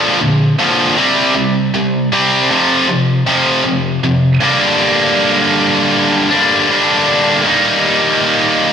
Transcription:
Already playing: A#2 D3 F3
0.21 A#2 D3
0.59 A#2 D3 F3
0.97 C3 G3 C4
1.36 C3 G3
1.74 C3 G3
2.12 C3 G3 C4
2.50 F2 C3 F3
2.89 F2 C3
3.26 F2 C3 F3
3.64 F2 C3
4.04 F2 C3
4.40 G2 D3 G3 A#3 D4
6.31 G2 D3 G3 A#3 D4
6.69 G2 D3 G3 A#3 D4
7.45 D#3 G3 A#3 D#4

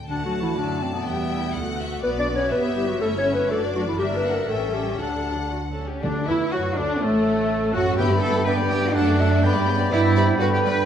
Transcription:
0.08 D2 D3 A3 D4 F#4 F#5 A5
0.25 F#3 F#4
0.41 E3 E4
0.57 F#2 D3 F#3 D4 D5
0.81 C3 C4
0.93 B2 B3
1.06 E2 G3 G4 E5 G5
1.32 E4
1.54 D2 A3 F#4 F#5
1.80 E5
2.01 B1 B3 F#4 B4 D5
2.18 D4 D5
2.27 B3 D4
2.35 C#4 C#5
2.50 G1 B3 G4 B4 E5
2.75 G3 B3 E4 G4
2.87 F#3 F#4
3.00 G1 A3 C#4 E4 A4 C#5 E5
3.16 C#4 C#5
3.26 C#4 E4
3.32 B3 B4
3.48 F#1 A3 D4 F#4 A4 D5
3.72 F#3 A3 D4 F#4
3.85 E3 E4
3.97 G1 G3 D4 G4 A#4 E5
4.13 B3 B4
4.23 A#3 D4 F#5
4.30 A#3 A#4
4.48 A1 A3 C#4 A4 E5 G5
4.72 G3 C#4 G4
4.98 D2 D3 D4 A4 F#5
5.26 F#3 D4
5.52 F#4
5.71 A4
5.76 F#3 C#4 D4
5.88 G4
6.01 D2 D3 D4
6.26 E2 E3 E4
6.52 F#2 F#3 F#4
6.76 D2 D3 D4
7.00 A1 A2 A3 A4
7.72 F#2 F#3 F#4
7.96 G2 E3 B3 D4 G4 B4 E5 G5 B5
8.10 G3 G4 D5
8.21 B3 A4 B4 G5
8.33 G3 G4 D5
8.45 B3 B4 D5 G5
8.59 G3 G4 D5
8.69 B3 G4 B4 G5
8.83 G3 G4 D5
8.94 F#2 D3 F#3 A3 D4 A4 D5 F#5 A5
9.08 A3 F#4 D5
9.19 F#3 A4 E5 F#5
9.31 A3 F#4 D5
9.43 G2 D3 B3 B4 D5 G5 B5
9.55 G3 G4 D5
9.68 C#3 B3 B4 G5
9.79 G3 G4 D5
9.90 G2 B2 G3 D4 E4 B4 D5 G5 B5
10.16 C3 G3 B4 D5
10.40 G2 D3 G3 F#4 B4 D5 B5
10.53 G4
10.64 G3 B4 D5

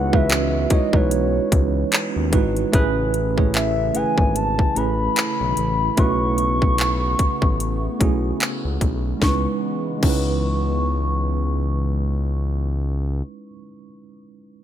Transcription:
Already playing: C#2 E3 G#3 B3 C#4 D#4 E4 F#4 B4 F#5
0.12 G#3 C#4 E4 F#4 B4 E5, kick
0.30 clap, closed hi-hat
0.70 B1 G#3 D#4 E4 F#4 C#5 D#5, kick, closed hi-hat
0.93 B1 G#3 D#4 E4 F#4 B4 C#5, kick
1.11 closed hi-hat
1.52 C#2, kick, closed hi-hat
1.92 clap, closed hi-hat
2.16 D#2
2.32 G#1 G#3 D#4 E4 F#4 B4, kick, closed hi-hat, open hi-hat
2.57 closed hi-hat
2.72 A1 C#3 E3 A3 C#4 E4 G#4 B4, kick, closed hi-hat
3.14 closed hi-hat
3.36 A3 C#4 E4 G#4 C#5, kick
3.54 E5, clap, closed hi-hat
3.94 G#1 A3 C#4 E4 G#4 B4 G#5, closed hi-hat
4.18 G#1, kick
4.36 A5, closed hi-hat
4.59 kick
4.75 A1 A3 C#4 E4 G#4 B4 B5, closed hi-hat
5.16 clap, closed hi-hat
5.41 B1
5.57 A1, closed hi-hat
5.97 B1 A3 B3 C#4 E4 F#4 B4 C#6, kick, closed hi-hat
6.38 closed hi-hat
6.62 kick
6.78 clap, closed hi-hat
7.19 A1, kick, closed hi-hat
7.42 A1, kick
7.60 closed hi-hat
8.00 B1 A3 C#4 E4 F#4 G#4, kick, closed hi-hat
8.40 clap, closed hi-hat
8.65 C#2
8.81 B1, kick, closed hi-hat
9.17 G#3 C#4
9.22 C#2 C#3 E3 G#3 B3 D#4 E4 C#6, kick, snare
9.28 B4
9.98 G#3 C#4
10.03 C#2 D#4 E4 C#6, kick, crash
10.09 B4

